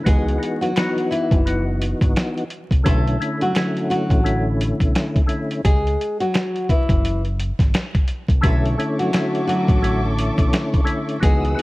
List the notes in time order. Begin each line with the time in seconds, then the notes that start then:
0.04 C#2 E3 B3 D#4 F#4 G#4, kick, closed hi-hat
0.08 G#3
0.29 closed hi-hat
0.38 E3 B3 D#4 F#4
0.43 closed hi-hat
0.61 F#3 F#4, closed hi-hat
0.76 E3 B3 D#4 F#4, finger snap, snare, closed hi-hat
0.98 closed hi-hat
1.11 E3 E4, closed hi-hat
1.31 F#1, kick, closed hi-hat
1.45 E3 B3 D#4 F#4, closed hi-hat
1.82 closed hi-hat
2.01 G#1, kick, closed hi-hat
2.16 finger snap, snare, closed hi-hat
2.37 closed hi-hat
2.50 closed hi-hat
2.71 C2, kick, closed hi-hat
2.83 B1 D3 A3 C#4 E4 A4, kick, closed hi-hat
3.08 closed hi-hat
3.20 D3 A3 C#4 E4, closed hi-hat
3.41 F#3 F#4, closed hi-hat
3.55 D3 A3 C#4 E4, finger snap, snare, closed hi-hat
3.77 closed hi-hat
3.90 F#3 F#4, closed hi-hat
4.10 A1, kick, closed hi-hat
4.23 D3 A3 C#4 E4, closed hi-hat
4.61 closed hi-hat
4.80 B1, kick, closed hi-hat
4.95 finger snap, snare, closed hi-hat
5.16 kick, closed hi-hat
5.26 D3 A3 C#4 E4, closed hi-hat
5.51 closed hi-hat
5.64 C#2 G#3 G#4, kick, closed hi-hat
5.87 closed hi-hat
6.01 closed hi-hat
6.20 F#3 F#4, closed hi-hat
6.34 finger snap, snare, closed hi-hat
6.56 closed hi-hat
6.69 E3 E4, kick, closed hi-hat
6.89 F#1, kick, closed hi-hat
7.05 closed hi-hat
7.25 closed hi-hat
7.40 closed hi-hat
7.59 G#1, kick, snare, closed hi-hat
7.74 finger snap, snare, closed hi-hat
7.95 kick, closed hi-hat
8.08 closed hi-hat
8.29 C2, kick, closed hi-hat
8.41 B1 D3 A3 C#4 E4 A4 E5 C#6 D6, kick, closed hi-hat
8.66 closed hi-hat
8.78 D3 A3 C#4 E4, closed hi-hat
8.99 F#3 F#4, closed hi-hat
9.13 D3 A3 C#4 E4, finger snap, snare, closed hi-hat
9.35 closed hi-hat
9.47 F#3 F#4, closed hi-hat
9.68 A1, kick, closed hi-hat
9.82 D3 A3 C#4 E4, closed hi-hat
10.19 closed hi-hat
10.38 B1, kick, closed hi-hat
10.53 finger snap, snare, closed hi-hat
10.74 kick, closed hi-hat
10.84 D3 A3 C#4 E4, closed hi-hat
11.09 closed hi-hat
11.20 C#2 E3 B3 D#4 F#4 G#4 B4 F#5 D#6 E6, kick, closed hi-hat
11.24 G#3
11.45 closed hi-hat
11.55 E3 B3 D#4 F#4
11.59 closed hi-hat